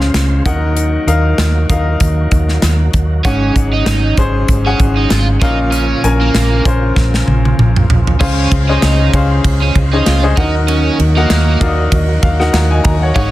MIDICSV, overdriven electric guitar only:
0, 0, Header, 1, 2, 480
1, 0, Start_track
1, 0, Tempo, 619835
1, 592, Time_signature, 4, 2, 24, 8
1, 10309, End_track
2, 0, Start_track
2, 0, Title_t, "Overdriven electric guitar"
2, 0, Program_c, 0, 29
2, 2513, Note_on_c, 0, 61, 82
2, 2742, Note_off_c, 0, 61, 0
2, 2889, Note_on_c, 0, 63, 81
2, 3214, Note_off_c, 0, 63, 0
2, 3610, Note_on_c, 0, 61, 71
2, 3711, Note_off_c, 0, 61, 0
2, 3851, Note_on_c, 0, 63, 60
2, 3951, Note_off_c, 0, 63, 0
2, 3954, Note_on_c, 0, 65, 81
2, 4083, Note_off_c, 0, 65, 0
2, 4194, Note_on_c, 0, 63, 75
2, 4323, Note_off_c, 0, 63, 0
2, 4428, Note_on_c, 0, 61, 91
2, 4660, Note_off_c, 0, 61, 0
2, 4809, Note_on_c, 0, 58, 81
2, 5135, Note_off_c, 0, 58, 0
2, 6356, Note_on_c, 0, 61, 97
2, 6584, Note_off_c, 0, 61, 0
2, 6731, Note_on_c, 0, 63, 77
2, 7055, Note_off_c, 0, 63, 0
2, 7449, Note_on_c, 0, 61, 68
2, 7549, Note_off_c, 0, 61, 0
2, 7688, Note_on_c, 0, 63, 69
2, 7789, Note_off_c, 0, 63, 0
2, 7791, Note_on_c, 0, 65, 84
2, 7920, Note_off_c, 0, 65, 0
2, 8031, Note_on_c, 0, 63, 79
2, 8160, Note_off_c, 0, 63, 0
2, 8272, Note_on_c, 0, 61, 100
2, 8501, Note_off_c, 0, 61, 0
2, 8648, Note_on_c, 0, 58, 75
2, 8972, Note_off_c, 0, 58, 0
2, 10187, Note_on_c, 0, 61, 91
2, 10309, Note_off_c, 0, 61, 0
2, 10309, End_track
0, 0, End_of_file